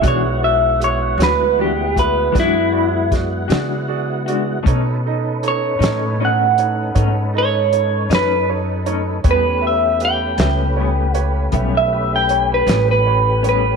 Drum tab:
HH |x-xx-xx-xx-x|x-xx-xx-xx-x|x-xx-xx-xx-x|
SD |---o--o-oo--|---o-----o--|---o-----o--|
BD |o----oo-o---|o-----o-----|o-----o-----|